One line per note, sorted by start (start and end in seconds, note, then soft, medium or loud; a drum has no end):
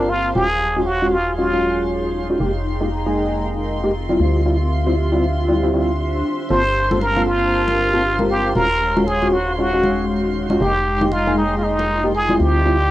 0.00 0.33 G1 medium
0.00 0.33 A#3 medium
0.00 0.33 C4 medium
0.00 0.11 D4 loud
0.00 0.33 F4 medium
0.00 0.35 G4 medium
0.00 0.33 A#4 medium
0.00 0.33 C5 medium
0.00 0.35 C5 medium
0.00 3.13 F5 medium
0.00 0.33 A5 loud
0.00 0.35 A5 medium
0.00 12.91 C6 medium
0.09 0.34 F4 medium
0.35 2.38 D#1 medium
0.35 2.38 F#3 medium
0.35 0.47 G#3 medium
0.35 0.47 C#4 medium
0.35 3.13 D#4 medium
0.35 0.47 F4 medium
0.35 0.47 F#4 medium
0.35 0.88 G#4 loud
0.35 2.38 C#5 medium
0.35 2.38 F5 medium
0.35 2.38 G#5 medium
0.66 3.05 G#4 medium
0.76 0.84 G#3 medium
0.76 0.84 C#4 medium
0.76 0.84 F4 medium
0.76 0.84 F#4 loud
0.86 1.13 F#4 loud
1.01 1.15 G#3 medium
1.01 1.15 C#4 medium
1.01 1.15 F4 medium
1.01 1.15 F#4 medium
1.12 1.37 F4 medium
1.29 2.40 C#5 medium
1.38 1.50 G#3 medium
1.38 1.50 C#4 medium
1.38 1.85 F4 medium
1.38 1.50 F4 medium
1.38 1.50 F#4 medium
1.53 2.26 F#3 loud
1.53 2.26 G#3 medium
1.53 2.26 C#4 medium
1.53 2.26 F4 medium
2.30 2.39 G#3 medium
2.30 2.39 C#4 medium
2.30 2.39 F4 medium
2.30 2.39 F#4 medium
2.40 4.18 F1 medium
2.40 2.52 G#3 medium
2.40 2.52 A#3 medium
2.40 4.87 C4 medium
2.40 2.52 D#4 medium
2.40 2.52 G4 medium
2.40 4.18 G#4 medium
2.40 4.18 D#5 medium
2.40 4.18 G5 medium
2.40 4.18 A#5 medium
2.81 2.89 G#3 medium
2.81 2.89 A#3 medium
2.81 2.89 D#4 medium
2.81 2.89 G4 medium
2.97 5.10 F4 medium
3.07 3.80 G#3 medium
3.07 3.80 A#3 medium
3.07 3.80 D#4 medium
3.07 3.80 G#4 medium
3.22 4.20 A#4 medium
3.22 4.20 D#5 medium
3.83 3.92 G#3 medium
3.83 3.92 A#3 medium
3.83 3.92 D#4 medium
3.83 3.92 G4 medium
4.09 4.43 G3 medium
4.09 4.43 C4 medium
4.09 4.43 E4 medium
4.09 4.43 F4 medium
4.20 6.23 D2 medium
4.20 8.56 D4 medium
4.20 6.48 G4 medium
4.20 6.48 E5 medium
4.20 6.48 F5 medium
4.20 8.52 C6 medium
4.45 4.57 G3 medium
4.45 4.57 C4 medium
4.45 4.57 E4 medium
4.45 4.57 F4 medium
4.45 8.56 G4 medium
4.86 4.94 G3 medium
4.86 4.94 C4 medium
4.86 4.94 E4 medium
4.86 4.94 F4 loud
5.11 5.25 G3 medium
5.11 5.25 C4 medium
5.11 5.25 E4 medium
5.11 5.26 F4 medium
5.11 8.56 C5 medium
5.24 6.51 E6 medium
5.48 5.61 G3 medium
5.48 5.61 C4 medium
5.48 5.61 E4 medium
5.48 5.61 F4 medium
5.63 5.71 G3 medium
5.63 5.71 C4 medium
5.63 5.71 E4 medium
5.63 5.71 F4 loud
5.74 5.91 G3 medium
5.74 5.91 C4 medium
5.74 5.91 E4 medium
5.74 5.91 F4 loud
6.50 8.54 G1 medium
6.50 6.62 A#3 medium
6.50 6.62 C4 medium
6.50 6.62 F4 medium
6.50 6.62 A4 medium
6.50 8.54 A#4 medium
6.50 6.98 C5 loud
6.50 10.57 F5 medium
6.50 8.54 A5 medium
6.91 6.99 A#3 medium
6.91 6.99 C4 medium
6.91 6.99 F4 medium
6.91 6.99 A4 medium
6.91 high conga medium
7.02 7.29 A#4 loud
7.02 muted conga soft
7.17 7.90 A#3 medium
7.17 7.90 C4 medium
7.17 7.90 F4 medium
7.17 7.90 A#4 medium
7.17 high conga medium
7.28 8.30 F4 loud
7.68 muted conga medium
7.94 8.02 A#3 medium
7.94 8.02 C4 medium
7.94 8.02 F4 medium
7.94 8.02 A4 medium
8.19 8.53 A#3 medium
8.19 8.53 C4 medium
8.19 8.53 F4 medium
8.19 8.53 A#4 medium
8.19 high conga medium
8.30 8.54 G4 medium
8.56 10.59 D#1 medium
8.56 8.67 G#3 medium
8.56 12.36 G#3 medium
8.56 8.67 C#4 medium
8.56 11.33 D#4 medium
8.56 8.67 F4 medium
8.56 8.67 F#4 medium
8.56 9.09 A#4 loud
8.56 10.59 C#5 medium
8.96 9.04 G#3 medium
8.96 9.04 C#4 medium
8.96 9.04 F4 medium
8.96 9.04 F#4 loud
8.96 high conga medium
9.05 11.33 G#3 medium
9.05 9.34 G#4 medium
9.05 muted conga soft
9.22 9.36 G#3 medium
9.22 9.36 C#4 medium
9.22 9.36 F4 medium
9.22 9.36 F#4 medium
9.22 high conga medium
9.33 9.58 F#4 medium
9.50 10.61 C#5 medium
9.58 9.71 G#3 medium
9.58 9.71 C#4 medium
9.58 9.71 F4 medium
9.58 9.71 F#4 medium
9.58 10.06 F#4 medium
9.73 10.46 G#3 medium
9.73 10.47 C#4 medium
9.73 10.47 F#4 loud
9.73 10.47 F5 medium
9.83 high conga medium
10.50 10.59 G#3 medium
10.50 10.59 C#4 medium
10.50 10.59 F4 medium
10.50 10.59 F#4 loud
10.50 high conga medium
10.61 12.38 F1 medium
10.61 10.72 G#3 medium
10.61 10.72 A#3 medium
10.61 10.72 D#4 medium
10.61 12.91 F4 medium
10.61 10.72 G4 medium
10.61 11.14 G4 loud
10.61 12.39 D#5 medium
10.61 12.39 G5 medium
10.61 12.39 A#5 loud
11.01 11.09 G#3 medium
11.01 11.09 A#3 medium
11.01 11.10 D#4 medium
11.01 11.10 G4 medium
11.01 high conga medium
11.09 11.37 F4 loud
11.09 12.40 A#4 medium
11.09 12.91 G5 medium
11.09 muted conga medium
11.27 12.00 G#3 medium
11.27 12.00 A#3 medium
11.27 12.00 D#4 medium
11.27 12.00 G#4 loud
11.27 high conga medium
11.38 11.56 D#4 medium
11.42 12.40 D#5 medium
11.58 11.65 F4 medium
11.63 12.14 D#4 medium
11.79 muted conga medium
12.04 12.12 G#3 medium
12.04 12.12 A#3 medium
12.04 12.12 D#4 medium
12.04 12.12 G4 medium
12.15 12.39 G#4 loud
12.29 12.63 G3 medium
12.29 12.63 C4 medium
12.29 12.63 E4 medium
12.29 12.63 F4 medium
12.29 high conga medium
12.40 12.91 D2 medium
12.40 12.91 G4 medium
12.40 12.91 G4 loud
12.40 12.91 D5 medium
12.40 12.91 F5 medium
12.40 12.91 C6 medium
12.66 12.77 G3 medium
12.66 12.77 C4 medium
12.66 12.77 E4 medium
12.66 12.77 F4 medium